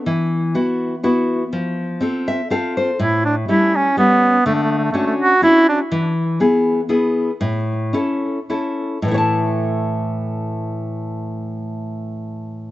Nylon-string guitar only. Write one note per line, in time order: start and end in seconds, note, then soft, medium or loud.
0.06 0.53 E3 medium
0.55 0.94 B3 soft
0.55 0.94 E4 soft
0.55 0.94 F#4 medium
1.03 1.43 B3 soft
1.03 1.43 E4 soft
1.03 1.43 F#4 medium
1.53 2.00 F3 medium
2.01 2.40 C4 medium
2.01 2.41 F4 soft
2.01 2.41 A4 medium
2.28 2.49 E5 medium
2.50 2.89 C4 soft
2.50 2.90 F4 soft
2.50 2.90 A4 medium
2.50 2.75 F5 medium
2.77 2.98 C5 medium
2.99 3.47 A2 medium
3.48 3.87 G3 medium
3.48 3.87 A3 soft
3.48 3.88 C#4 soft
3.97 4.36 G3 soft
3.97 4.36 A3 soft
3.97 4.36 C#4 medium
4.46 4.93 D3 medium
4.94 5.33 C#4 soft
4.94 5.33 D4 soft
4.94 5.33 F#4 medium
5.42 5.81 C#4 soft
5.42 5.81 D4 soft
5.42 5.82 F#4 medium
5.92 6.38 E3 medium
6.40 6.79 B3 soft
6.40 6.80 E4 soft
6.40 6.80 G#4 medium
6.89 7.30 B3 medium
6.89 7.30 E4 medium
6.89 7.30 G#4 medium
7.41 7.92 A2 medium
7.93 8.38 C#4 soft
7.93 8.38 E4 soft
7.93 8.39 A4 medium
8.50 8.97 C#4 soft
8.50 8.97 E4 soft
8.50 8.98 A4 soft
9.02 12.71 A2 medium
9.02 12.71 E3 medium
9.08 12.71 A3 medium
9.08 12.71 E4 medium
9.14 9.17 C#5 medium
9.14 12.71 A5 medium